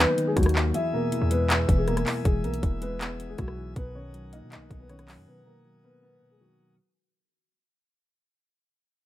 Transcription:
0.00 0.16 D#3 medium
0.00 0.35 F#3 medium
0.00 0.54 A#3 medium
0.00 0.26 B3 medium
0.00 0.74 D#4 medium
0.00 0.26 B4 medium
0.18 0.74 D#3 medium
0.18 closed hi-hat medium
0.27 0.36 G#3 medium
0.27 0.36 G#4 medium
0.37 0.73 D#2 loud
0.37 0.74 F#3 medium
0.37 0.73 F#3 medium
0.37 0.72 F#4 medium
0.37 kick medium
0.37 cross-stick medium
0.37 closed hi-hat medium
0.43 cross-stick medium
0.43 closed hi-hat medium
0.49 closed hi-hat medium
0.55 0.74 A#3 medium
0.55 clap loud
0.74 1.67 E2 medium
0.74 0.92 E4 medium
0.74 3.73 G#4 medium
0.74 3.73 E5 medium
0.74 0.92 E5 medium
0.74 6.74 G#5 medium
0.74 3.73 E6 medium
0.74 closed hi-hat medium
0.93 1.86 B2 medium
0.93 1.29 A#3 medium
0.93 1.29 A#4 medium
1.12 2.05 E3 medium
1.12 closed hi-hat medium
1.22 1.66 E2 loud
1.31 2.25 G#3 medium
1.31 1.49 B3 medium
1.31 1.48 B4 medium
1.31 closed hi-hat medium
1.50 1.77 B3 medium
1.50 clap loud
1.50 closed hi-hat medium
1.69 2.05 E1 loud
1.69 2.24 E2 medium
1.69 kick loud
1.69 closed hi-hat medium
1.78 1.87 G#3 medium
1.78 1.87 G#4 medium
1.88 2.43 B2 medium
1.88 2.23 A#3 medium
1.88 2.23 A#4 medium
1.88 cross-stick medium
1.88 closed hi-hat medium
1.97 cross-stick medium
1.97 closed hi-hat medium
2.06 2.62 E3 medium
2.06 clap loud
2.06 open hi-hat medium
2.25 2.46 E1 loud
2.25 3.18 E2 medium
2.25 2.43 G#3 medium
2.25 2.43 G#4 medium
2.25 kick loud
2.25 closed hi-hat medium
2.44 2.62 B1 loud
2.44 3.37 B2 medium
2.44 2.80 A#3 medium
2.44 2.80 A#4 medium
2.44 closed hi-hat medium
2.54 closed hi-hat medium
2.63 3.35 E1 loud
2.63 3.56 E3 medium
2.63 kick loud
2.63 closed hi-hat medium
2.82 3.76 G#3 loud
2.82 3.00 B3 medium
2.82 2.99 B4 medium
2.82 closed hi-hat medium
3.01 3.76 B3 medium
3.01 3.28 B3 medium
3.01 clap loud
3.01 closed hi-hat medium
3.20 3.76 E2 medium
3.20 closed hi-hat medium
3.29 3.38 G#3 medium
3.29 3.38 G#4 medium
3.38 3.75 B1 loud
3.38 3.75 B2 medium
3.38 3.74 F#3 medium
3.38 3.74 F#4 medium
3.38 kick medium
3.38 cross-stick medium
3.38 closed hi-hat medium
3.48 cross-stick medium
3.57 3.76 E3 medium
3.76 4.44 B1 loud
3.76 4.69 B2 medium
3.76 3.94 B3 medium
3.76 6.75 A#4 medium
3.76 3.94 B4 medium
3.76 6.75 F#5 medium
3.76 6.75 D#6 medium
3.76 kick loud
3.76 closed hi-hat medium
3.95 4.88 D#3 medium
3.95 4.31 C#4 medium
3.95 4.31 C#5 medium
4.14 5.07 F#3 medium
4.14 closed hi-hat medium
4.33 5.27 A#3 loud
4.33 4.50 D#4 medium
4.33 4.50 D#5 medium
4.33 closed hi-hat medium
4.42 4.58 B2 loud
4.52 5.46 B3 medium
4.52 4.79 D#4 medium
4.52 4.78 D#5 medium
4.52 clap loud
4.52 closed hi-hat medium
4.56 4.70 B1 loud
4.71 5.19 B1 loud
4.71 5.26 B2 medium
4.71 kick loud
4.71 closed hi-hat medium
4.80 4.89 B3 medium
4.80 4.89 B4 medium
4.89 5.45 D#3 loud
4.89 5.25 C#4 medium
4.89 5.25 C#5 medium
4.89 cross-stick medium
4.89 closed hi-hat medium
4.99 cross-stick medium
4.99 closed hi-hat medium
5.08 5.64 F#3 medium
5.08 clap loud
5.08 open hi-hat medium
5.18 5.27 F#2 loud
5.27 6.20 B2 medium
5.27 5.45 B3 medium
5.27 5.44 B4 medium
5.46 6.39 D#3 medium
5.46 5.82 A#3 medium
5.46 5.81 A#4 medium
5.65 6.58 F#3 medium
5.84 6.78 A#3 loud
5.84 6.01 B3 medium
5.84 6.01 B4 medium
6.02 6.78 B3 medium
6.02 6.30 B3 medium
6.02 6.29 B4 medium
6.22 6.78 B2 medium
6.31 6.40 G#3 medium
6.31 6.40 G#4 medium
6.40 6.78 D#3 medium
6.40 6.76 F#3 medium
6.40 6.76 F#4 medium
6.59 6.78 F#3 medium

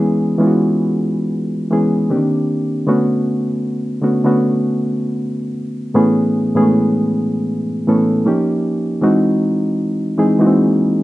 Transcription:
0.00 0.28 E3 loud
0.00 0.28 G#3 medium
0.00 0.29 B3 medium
0.00 0.29 C#4 medium
0.00 0.29 G#4 loud
0.39 1.51 E3 medium
0.39 1.51 G#3 medium
0.39 1.51 B3 medium
0.39 1.52 C#4 medium
0.39 0.46 F4 medium
0.47 1.55 F#4 medium
1.71 2.09 E3 medium
1.71 2.10 G#3 medium
1.71 2.10 B3 medium
1.71 2.10 C#4 medium
1.71 2.10 G#4 medium
2.09 2.17 D3 medium
2.09 2.76 A#3 medium
2.09 2.76 C4 medium
2.09 2.76 D4 medium
2.09 2.77 G4 medium
2.16 2.79 D#3 medium
2.87 3.86 D3 medium
2.87 3.86 A3 medium
2.87 3.86 B3 medium
2.87 3.87 C#4 medium
2.87 3.87 F#4 medium
4.02 4.20 D3 medium
4.02 4.20 A3 medium
4.02 4.21 B3 medium
4.02 4.21 C#4 medium
4.02 4.21 F#4 medium
4.24 5.51 D3 medium
4.24 5.51 A3 medium
4.24 5.51 B3 medium
4.24 5.51 C#4 medium
4.24 5.52 F#4 medium
5.94 6.44 A2 medium
5.94 6.44 E3 medium
5.94 6.44 A3 medium
5.94 6.44 B3 medium
5.94 6.45 C#4 medium
5.94 6.45 G#4 loud
6.55 7.67 A2 medium
6.55 7.67 E3 medium
6.55 6.61 G#3 medium
6.55 7.67 B3 medium
6.55 7.68 C#4 medium
6.55 7.68 G#4 medium
6.62 7.70 A3 medium
7.87 8.25 A2 medium
7.87 8.25 E3 medium
7.87 8.26 A3 medium
7.87 8.26 B3 medium
7.87 8.25 C#4 medium
7.87 8.26 A4 medium
8.25 8.91 F3 medium
8.25 8.92 A#3 medium
8.25 8.92 C#4 medium
8.25 8.92 D#4 medium
8.25 8.92 G4 medium
9.01 10.01 E3 medium
9.01 10.01 G#3 medium
9.01 10.01 C4 medium
9.01 10.02 D#4 medium
9.01 10.02 F#4 loud
10.17 10.36 E3 medium
10.17 10.36 G#3 medium
10.17 10.36 C4 medium
10.17 10.37 D#4 medium
10.17 10.37 G#4 medium
10.39 11.03 E3 medium
10.39 11.03 G#3 medium
10.39 10.45 A#3 medium
10.39 11.03 D#4 medium
10.39 11.03 F#4 medium
10.47 11.03 C4 medium

